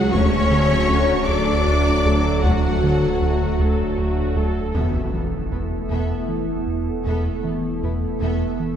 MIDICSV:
0, 0, Header, 1, 13, 480
1, 0, Start_track
1, 0, Tempo, 769231
1, 85, Time_signature, 6, 3, 24, 8
1, 5469, End_track
2, 0, Start_track
2, 0, Title_t, "Violin section"
2, 0, Program_c, 0, 48
2, 0, Note_on_c, 0, 78, 110
2, 70, Note_off_c, 0, 78, 0
2, 77, Note_on_c, 0, 85, 104
2, 787, Note_off_c, 0, 85, 0
2, 796, Note_on_c, 0, 86, 96
2, 1510, Note_on_c, 0, 78, 81
2, 1521, Note_off_c, 0, 86, 0
2, 2223, Note_off_c, 0, 78, 0
2, 2958, Note_on_c, 0, 76, 42
2, 3185, Note_off_c, 0, 76, 0
2, 3200, Note_on_c, 0, 69, 27
2, 3250, Note_off_c, 0, 69, 0
2, 3443, Note_on_c, 0, 71, 31
2, 3493, Note_off_c, 0, 71, 0
2, 3683, Note_on_c, 0, 76, 41
2, 3907, Note_off_c, 0, 76, 0
2, 4408, Note_on_c, 0, 76, 40
2, 4630, Note_off_c, 0, 76, 0
2, 4649, Note_on_c, 0, 69, 30
2, 4699, Note_off_c, 0, 69, 0
2, 4889, Note_on_c, 0, 71, 36
2, 4939, Note_off_c, 0, 71, 0
2, 5129, Note_on_c, 0, 76, 55
2, 5350, Note_off_c, 0, 76, 0
2, 5469, End_track
3, 0, Start_track
3, 0, Title_t, "Violin section"
3, 0, Program_c, 1, 48
3, 0, Note_on_c, 1, 66, 95
3, 67, Note_off_c, 1, 66, 0
3, 88, Note_on_c, 1, 73, 108
3, 804, Note_on_c, 1, 74, 88
3, 807, Note_off_c, 1, 73, 0
3, 1525, Note_off_c, 1, 74, 0
3, 1526, Note_on_c, 1, 66, 78
3, 2232, Note_off_c, 1, 66, 0
3, 2960, Note_on_c, 1, 69, 36
3, 3186, Note_off_c, 1, 69, 0
3, 3201, Note_on_c, 1, 59, 31
3, 3250, Note_off_c, 1, 59, 0
3, 3437, Note_on_c, 1, 64, 28
3, 3487, Note_off_c, 1, 64, 0
3, 3685, Note_on_c, 1, 69, 44
3, 3908, Note_off_c, 1, 69, 0
3, 4409, Note_on_c, 1, 69, 48
3, 4631, Note_off_c, 1, 69, 0
3, 4644, Note_on_c, 1, 59, 35
3, 4694, Note_off_c, 1, 59, 0
3, 4889, Note_on_c, 1, 64, 35
3, 4939, Note_off_c, 1, 64, 0
3, 5122, Note_on_c, 1, 69, 53
3, 5347, Note_off_c, 1, 69, 0
3, 5469, End_track
4, 0, Start_track
4, 0, Title_t, "Ambient pad"
4, 0, Program_c, 2, 92
4, 0, Note_on_c, 2, 61, 77
4, 0, Note_on_c, 2, 66, 73
4, 0, Note_on_c, 2, 68, 79
4, 63, Note_off_c, 2, 66, 0
4, 83, Note_on_c, 2, 69, 84
4, 87, Note_off_c, 2, 61, 0
4, 87, Note_off_c, 2, 68, 0
4, 88, Note_on_c, 2, 54, 80
4, 89, Note_on_c, 2, 57, 78
4, 89, Note_on_c, 2, 66, 77
4, 2942, Note_off_c, 2, 54, 0
4, 2942, Note_off_c, 2, 66, 0
4, 2961, Note_off_c, 2, 57, 0
4, 2961, Note_off_c, 2, 69, 0
4, 2966, Note_on_c, 2, 64, 49
4, 2968, Note_on_c, 2, 57, 54
4, 2968, Note_on_c, 2, 69, 51
4, 2969, Note_on_c, 2, 59, 50
4, 5469, Note_off_c, 2, 57, 0
4, 5469, Note_off_c, 2, 59, 0
4, 5469, Note_off_c, 2, 64, 0
4, 5469, Note_off_c, 2, 69, 0
4, 5469, End_track
5, 0, Start_track
5, 0, Title_t, "French horn section"
5, 0, Program_c, 3, 60
5, 572, Note_on_c, 3, 66, 71
5, 576, Note_on_c, 3, 57, 72
5, 654, Note_off_c, 3, 66, 0
5, 656, Note_off_c, 3, 57, 0
5, 1291, Note_on_c, 3, 66, 64
5, 1295, Note_on_c, 3, 57, 64
5, 1373, Note_off_c, 3, 66, 0
5, 1376, Note_off_c, 3, 57, 0
5, 2001, Note_on_c, 3, 57, 68
5, 2004, Note_on_c, 3, 66, 69
5, 2086, Note_off_c, 3, 57, 0
5, 2088, Note_off_c, 3, 66, 0
5, 2721, Note_on_c, 3, 66, 60
5, 2723, Note_on_c, 3, 57, 67
5, 2806, Note_off_c, 3, 66, 0
5, 2807, Note_off_c, 3, 57, 0
5, 5469, End_track
6, 0, Start_track
6, 0, Title_t, "Viola section"
6, 0, Program_c, 4, 48
6, 0, Note_on_c, 4, 56, 72
6, 0, Note_on_c, 4, 68, 67
6, 86, Note_off_c, 4, 56, 0
6, 87, Note_off_c, 4, 68, 0
6, 87, Note_on_c, 4, 66, 67
6, 89, Note_on_c, 4, 57, 74
6, 309, Note_off_c, 4, 66, 0
6, 310, Note_off_c, 4, 57, 0
6, 320, Note_on_c, 4, 69, 63
6, 323, Note_on_c, 4, 54, 65
6, 562, Note_on_c, 4, 57, 64
6, 563, Note_off_c, 4, 69, 0
6, 563, Note_on_c, 4, 66, 64
6, 564, Note_off_c, 4, 54, 0
6, 804, Note_off_c, 4, 57, 0
6, 804, Note_off_c, 4, 66, 0
6, 804, Note_on_c, 4, 69, 66
6, 807, Note_on_c, 4, 54, 63
6, 1040, Note_on_c, 4, 57, 61
6, 1040, Note_on_c, 4, 66, 59
6, 1045, Note_off_c, 4, 69, 0
6, 1046, Note_off_c, 4, 54, 0
6, 1266, Note_off_c, 4, 57, 0
6, 1266, Note_off_c, 4, 66, 0
6, 1280, Note_on_c, 4, 54, 61
6, 1280, Note_on_c, 4, 69, 54
6, 1517, Note_on_c, 4, 57, 59
6, 1518, Note_on_c, 4, 66, 60
6, 1523, Note_off_c, 4, 54, 0
6, 1523, Note_off_c, 4, 69, 0
6, 1758, Note_on_c, 4, 69, 53
6, 1759, Note_on_c, 4, 54, 57
6, 1761, Note_off_c, 4, 57, 0
6, 1761, Note_off_c, 4, 66, 0
6, 2002, Note_off_c, 4, 54, 0
6, 2002, Note_off_c, 4, 69, 0
6, 2004, Note_on_c, 4, 57, 59
6, 2005, Note_on_c, 4, 66, 59
6, 2228, Note_off_c, 4, 57, 0
6, 2228, Note_off_c, 4, 66, 0
6, 2243, Note_on_c, 4, 54, 58
6, 2247, Note_on_c, 4, 69, 58
6, 2482, Note_on_c, 4, 57, 60
6, 2484, Note_off_c, 4, 54, 0
6, 2486, Note_off_c, 4, 69, 0
6, 2486, Note_on_c, 4, 66, 60
6, 2724, Note_off_c, 4, 57, 0
6, 2726, Note_off_c, 4, 66, 0
6, 2726, Note_on_c, 4, 69, 58
6, 2727, Note_on_c, 4, 54, 57
6, 2960, Note_on_c, 4, 59, 34
6, 2966, Note_off_c, 4, 54, 0
6, 2966, Note_off_c, 4, 69, 0
6, 3186, Note_off_c, 4, 59, 0
6, 3203, Note_on_c, 4, 59, 30
6, 3253, Note_off_c, 4, 59, 0
6, 3440, Note_on_c, 4, 59, 33
6, 3490, Note_off_c, 4, 59, 0
6, 3682, Note_on_c, 4, 59, 43
6, 3907, Note_off_c, 4, 59, 0
6, 4403, Note_on_c, 4, 59, 46
6, 4627, Note_off_c, 4, 59, 0
6, 4645, Note_on_c, 4, 59, 36
6, 4695, Note_off_c, 4, 59, 0
6, 4888, Note_on_c, 4, 59, 41
6, 4938, Note_off_c, 4, 59, 0
6, 5129, Note_on_c, 4, 59, 47
6, 5351, Note_off_c, 4, 59, 0
6, 5469, End_track
7, 0, Start_track
7, 0, Title_t, "Analog synth bass"
7, 0, Program_c, 5, 38
7, 81, Note_on_c, 5, 38, 108
7, 226, Note_off_c, 5, 38, 0
7, 320, Note_on_c, 5, 50, 75
7, 466, Note_off_c, 5, 50, 0
7, 563, Note_on_c, 5, 38, 71
7, 708, Note_off_c, 5, 38, 0
7, 801, Note_on_c, 5, 38, 102
7, 947, Note_off_c, 5, 38, 0
7, 1044, Note_on_c, 5, 38, 68
7, 1189, Note_off_c, 5, 38, 0
7, 1282, Note_on_c, 5, 38, 76
7, 1427, Note_off_c, 5, 38, 0
7, 1521, Note_on_c, 5, 38, 96
7, 1666, Note_off_c, 5, 38, 0
7, 1767, Note_on_c, 5, 50, 77
7, 1910, Note_off_c, 5, 50, 0
7, 2006, Note_on_c, 5, 38, 75
7, 2150, Note_off_c, 5, 38, 0
7, 2243, Note_on_c, 5, 38, 103
7, 2387, Note_off_c, 5, 38, 0
7, 2486, Note_on_c, 5, 38, 63
7, 2630, Note_off_c, 5, 38, 0
7, 2722, Note_on_c, 5, 38, 77
7, 2867, Note_off_c, 5, 38, 0
7, 2961, Note_on_c, 5, 40, 67
7, 3106, Note_off_c, 5, 40, 0
7, 3204, Note_on_c, 5, 52, 49
7, 3348, Note_off_c, 5, 52, 0
7, 3442, Note_on_c, 5, 40, 46
7, 3587, Note_off_c, 5, 40, 0
7, 3684, Note_on_c, 5, 40, 69
7, 3828, Note_off_c, 5, 40, 0
7, 3921, Note_on_c, 5, 52, 44
7, 4067, Note_off_c, 5, 52, 0
7, 4163, Note_on_c, 5, 40, 50
7, 4307, Note_off_c, 5, 40, 0
7, 4407, Note_on_c, 5, 40, 73
7, 4551, Note_off_c, 5, 40, 0
7, 4643, Note_on_c, 5, 52, 51
7, 4788, Note_off_c, 5, 52, 0
7, 4886, Note_on_c, 5, 40, 52
7, 5030, Note_off_c, 5, 40, 0
7, 5122, Note_on_c, 5, 40, 72
7, 5267, Note_off_c, 5, 40, 0
7, 5364, Note_on_c, 5, 52, 51
7, 5469, Note_off_c, 5, 52, 0
7, 5469, End_track
8, 0, Start_track
8, 0, Title_t, "Cello section"
8, 0, Program_c, 6, 48
8, 0, Note_on_c, 6, 54, 93
8, 71, Note_off_c, 6, 54, 0
8, 85, Note_on_c, 6, 61, 107
8, 801, Note_on_c, 6, 62, 85
8, 805, Note_off_c, 6, 61, 0
8, 1518, Note_on_c, 6, 54, 66
8, 1523, Note_off_c, 6, 62, 0
8, 2242, Note_off_c, 6, 54, 0
8, 2960, Note_on_c, 6, 40, 41
8, 3009, Note_off_c, 6, 40, 0
8, 3199, Note_on_c, 6, 40, 27
8, 3249, Note_off_c, 6, 40, 0
8, 3440, Note_on_c, 6, 40, 31
8, 3490, Note_off_c, 6, 40, 0
8, 3679, Note_on_c, 6, 40, 41
8, 3729, Note_off_c, 6, 40, 0
8, 4401, Note_on_c, 6, 40, 44
8, 4451, Note_off_c, 6, 40, 0
8, 4640, Note_on_c, 6, 40, 35
8, 4690, Note_off_c, 6, 40, 0
8, 4879, Note_on_c, 6, 40, 38
8, 4929, Note_off_c, 6, 40, 0
8, 5119, Note_on_c, 6, 40, 53
8, 5169, Note_off_c, 6, 40, 0
8, 5469, End_track
9, 0, Start_track
9, 0, Title_t, "Tuba"
9, 0, Program_c, 7, 58
9, 88, Note_on_c, 7, 38, 87
9, 722, Note_off_c, 7, 38, 0
9, 809, Note_on_c, 7, 38, 77
9, 1443, Note_off_c, 7, 38, 0
9, 1524, Note_on_c, 7, 38, 75
9, 2160, Note_off_c, 7, 38, 0
9, 2248, Note_on_c, 7, 38, 67
9, 2882, Note_off_c, 7, 38, 0
9, 5469, End_track
10, 0, Start_track
10, 0, Title_t, "Double bass section"
10, 0, Program_c, 8, 48
10, 86, Note_on_c, 8, 38, 93
10, 721, Note_off_c, 8, 38, 0
10, 806, Note_on_c, 8, 38, 88
10, 1441, Note_off_c, 8, 38, 0
10, 1524, Note_on_c, 8, 38, 77
10, 2160, Note_off_c, 8, 38, 0
10, 2242, Note_on_c, 8, 38, 75
10, 2879, Note_off_c, 8, 38, 0
10, 2961, Note_on_c, 8, 28, 44
10, 3011, Note_off_c, 8, 28, 0
10, 3203, Note_on_c, 8, 28, 29
10, 3253, Note_off_c, 8, 28, 0
10, 3440, Note_on_c, 8, 28, 28
10, 3490, Note_off_c, 8, 28, 0
10, 3684, Note_on_c, 8, 28, 45
10, 3734, Note_off_c, 8, 28, 0
10, 4405, Note_on_c, 8, 28, 45
10, 4454, Note_off_c, 8, 28, 0
10, 4644, Note_on_c, 8, 28, 37
10, 4694, Note_off_c, 8, 28, 0
10, 4884, Note_on_c, 8, 28, 36
10, 4934, Note_off_c, 8, 28, 0
10, 5126, Note_on_c, 8, 28, 57
10, 5176, Note_off_c, 8, 28, 0
10, 5469, End_track
11, 0, Start_track
11, 0, Title_t, "Sub bass"
11, 0, Program_c, 10, 38
11, 0, Note_on_c, 10, 37, 78
11, 86, Note_on_c, 10, 26, 75
11, 95, Note_off_c, 10, 37, 0
11, 2957, Note_off_c, 10, 26, 0
11, 2961, Note_on_c, 10, 28, 52
11, 5469, Note_off_c, 10, 28, 0
11, 5469, End_track
12, 0, Start_track
12, 0, Title_t, "Impact"
12, 0, Program_c, 11, 103
12, 2962, Note_on_c, 11, 60, 44
12, 4404, Note_off_c, 11, 60, 0
12, 5469, End_track
13, 0, Start_track
13, 0, Title_t, "Taiko and cinematic ensemble drums"
13, 86, Note_on_c, 9, 41, 102
13, 148, Note_off_c, 9, 41, 0
13, 1525, Note_on_c, 9, 41, 95
13, 1587, Note_off_c, 9, 41, 0
13, 2963, Note_on_c, 9, 41, 46
13, 3025, Note_off_c, 9, 41, 0
13, 5469, End_track
0, 0, End_of_file